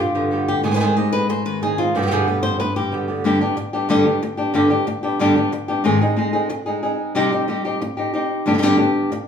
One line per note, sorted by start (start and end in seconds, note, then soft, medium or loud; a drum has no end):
0.00 0.63 G2 medium
0.00 0.63 G3 medium
0.00 0.48 F4 medium
0.15 0.62 D3 medium
0.15 0.30 D3 soft
0.15 0.30 G3 soft
0.15 0.31 B3 soft
0.15 0.31 G4 medium
0.31 0.64 D3 medium
0.31 0.64 G3 soft
0.31 0.64 B3 medium
0.31 0.65 G4 medium
0.48 0.64 G4 loud
0.63 1.92 G#2 medium
0.63 0.79 G#2 medium
0.63 0.66 D#3 medium
0.63 0.70 D#3 soft
0.63 0.67 G#3 medium
0.63 0.70 G#3 soft
0.63 0.67 C4 medium
0.63 0.70 C4 soft
0.63 0.67 D#4 medium
0.63 0.71 D#4 soft
0.63 0.74 G#4 medium
0.63 0.67 G#4 medium
0.68 0.74 D#3 medium
0.68 0.75 G#3 medium
0.68 0.75 C4 medium
0.68 0.71 G#4 medium
0.72 0.79 D#3 medium
0.72 0.79 G#3 medium
0.72 0.75 D#4 medium
0.72 0.75 G#4 medium
0.72 0.86 B4 loud
0.76 0.96 G#2 medium
0.76 0.80 C4 medium
0.76 0.80 D#4 medium
0.76 0.80 G#4 medium
0.80 0.96 D#3 medium
0.80 0.96 G#3 medium
0.80 0.96 C4 medium
0.80 0.96 D#4 medium
0.80 0.95 G#4 medium
0.86 0.96 G#4 loud
0.96 1.93 G#3 medium
0.96 1.28 G#3 soft
0.96 1.29 C4 soft
0.96 1.29 D#4 soft
0.96 1.12 G4 medium
0.96 1.29 G#4 medium
1.13 1.29 B4 loud
1.29 1.45 C5 loud
1.29 muted nylon-string guitar stroke medium
1.45 1.93 D#3 medium
1.45 1.62 B4 loud
1.62 1.78 G#3 soft
1.62 1.78 C4 medium
1.62 1.78 D#4 medium
1.62 1.79 G#4 medium
1.62 1.77 G#4 medium
1.78 1.95 G#3 soft
1.78 1.95 C4 soft
1.78 1.94 D#4 soft
1.78 1.95 F4 loud
1.78 1.94 G#4 medium
1.94 2.10 G2 medium
1.94 2.75 G2 medium
1.94 1.97 B2 medium
1.94 2.01 B2 medium
1.94 1.98 D3 medium
1.94 1.98 G3 medium
1.94 1.98 B3 medium
1.94 2.11 G4 medium
1.98 2.01 D3 soft
1.98 2.02 G3 medium
1.98 2.02 B3 soft
1.98 2.02 G4 soft
2.02 2.05 B2 medium
2.02 2.06 D3 medium
2.02 2.06 G3 medium
2.02 2.06 B3 medium
2.02 2.07 G4 medium
2.07 2.10 B2 medium
2.07 2.11 D3 medium
2.07 2.11 G3 medium
2.07 2.11 B3 medium
2.07 2.11 G4 medium
2.11 2.27 G2 medium
2.11 2.27 B2 medium
2.11 2.27 D3 medium
2.11 2.27 G3 medium
2.11 2.27 B3 medium
2.11 2.26 G4 medium
2.11 2.27 G#4 loud
2.27 2.59 D3 soft
2.27 2.59 G3 soft
2.27 3.23 B3 medium
2.27 2.60 B3 soft
2.27 2.59 G4 medium
2.27 2.42 B4 loud
2.43 2.59 C5 loud
2.60 2.76 B4 loud
2.60 muted nylon-string guitar stroke medium
2.76 3.23 G2 medium
2.76 2.92 G4 loud
2.92 3.08 D3 soft
2.92 3.08 G3 medium
2.92 3.08 B3 medium
2.92 3.07 G4 medium
3.08 3.25 D3 soft
3.08 3.25 G3 soft
3.08 3.24 B3 soft
3.08 3.24 G4 soft
3.24 3.40 G2 medium
3.24 3.40 D3 medium
3.24 3.41 G3 medium
3.24 3.41 B3 loud
3.24 3.41 D4 medium
3.24 3.40 G4 loud
3.41 3.56 G3 medium
3.41 3.56 B3 medium
3.41 3.56 D4 medium
3.41 3.57 G4 medium
3.57 muted nylon-string guitar stroke medium
3.73 3.89 G3 soft
3.73 3.89 B3 medium
3.73 3.89 D4 medium
3.73 3.89 G4 medium
3.89 4.05 G2 loud
3.89 4.05 D3 loud
3.89 4.05 G3 loud
3.89 4.05 B3 loud
3.89 4.05 D4 loud
3.89 4.04 G4 loud
4.06 4.22 G3 soft
4.06 4.22 B3 medium
4.06 4.22 D4 medium
4.06 4.21 G4 medium
4.22 muted nylon-string guitar stroke medium
4.37 4.53 G3 soft
4.37 4.54 B3 medium
4.37 4.54 D4 medium
4.37 4.53 G4 medium
4.54 4.70 G2 loud
4.54 4.70 D3 medium
4.54 4.70 G3 medium
4.54 4.70 B3 medium
4.54 4.70 D4 loud
4.54 4.69 G4 loud
4.70 4.86 G3 medium
4.70 4.86 B3 medium
4.70 4.86 D4 medium
4.70 4.86 G4 medium
4.87 muted nylon-string guitar stroke medium
5.03 5.19 G3 soft
5.03 5.20 B3 medium
5.03 5.19 D4 medium
5.03 5.19 G4 medium
5.19 5.35 G2 medium
5.19 5.35 D3 loud
5.19 5.36 G3 medium
5.19 5.36 B3 loud
5.19 5.36 D4 loud
5.19 5.35 G4 loud
5.36 5.52 G3 medium
5.36 5.52 B3 medium
5.36 5.52 D4 soft
5.36 5.52 G4 medium
5.52 muted nylon-string guitar stroke medium
5.68 5.84 G3 soft
5.68 5.85 B3 medium
5.68 5.84 D4 medium
5.68 5.84 G4 medium
5.84 6.00 G#2 medium
5.84 6.00 D#3 medium
5.84 6.00 G#3 medium
5.84 6.00 C4 medium
5.84 6.01 D#4 loud
5.84 6.00 G#4 loud
6.01 6.15 G#3 soft
6.01 6.16 C4 medium
6.01 6.17 D#4 medium
6.01 6.17 G#4 medium
6.16 6.32 G#3 medium
6.16 6.33 C4 medium
6.16 6.32 D#4 medium
6.16 6.32 G#4 medium
6.33 6.49 G#3 medium
6.33 6.49 C4 medium
6.33 6.49 D#4 medium
6.33 6.49 G#4 medium
6.49 muted nylon-string guitar stroke medium
6.66 6.83 G#3 soft
6.66 6.82 C4 medium
6.66 6.82 D#4 medium
6.66 6.82 G#4 medium
6.83 7.15 G#3 soft
6.83 7.15 C4 soft
6.83 7.15 D#4 medium
6.83 7.14 G#4 medium
7.15 7.31 C3 medium
7.15 7.31 G3 loud
7.15 7.31 C4 loud
7.15 7.31 D#4 loud
7.15 7.31 G4 loud
7.32 7.47 C4 medium
7.32 7.48 D#4 medium
7.32 7.47 G4 medium
7.48 7.63 G3 medium
7.48 7.64 C4 medium
7.48 7.64 D#4 medium
7.48 7.64 G4 medium
7.65 7.81 C4 medium
7.65 7.80 D#4 medium
7.65 7.80 G4 medium
7.82 muted nylon-string guitar stroke medium
7.97 8.13 C4 soft
7.97 8.13 D#4 medium
7.97 8.12 G4 medium
8.14 8.46 C4 medium
8.14 8.46 D#4 medium
8.14 8.45 G4 medium
8.46 8.61 G2 medium
8.46 8.52 D3 medium
8.46 8.53 G3 medium
8.46 8.53 B3 loud
8.46 8.54 D4 loud
8.46 8.53 G4 medium
8.53 8.57 D3 medium
8.53 8.57 G3 medium
8.53 8.58 B3 medium
8.53 8.58 D4 medium
8.53 8.58 G4 medium
8.58 8.61 D3 medium
8.58 8.62 G3 medium
8.58 8.62 B3 medium
8.58 8.62 D4 medium
8.58 8.63 G4 medium
8.63 8.78 G2 loud
8.63 8.78 D3 medium
8.63 8.78 G3 loud
8.63 8.78 B3 loud
8.63 8.78 D4 loud
8.63 8.77 G4 loud
8.78 9.11 G3 medium
8.78 9.11 B3 medium
8.78 9.11 D4 medium
8.78 9.10 G4 medium
9.12 muted nylon-string guitar stroke medium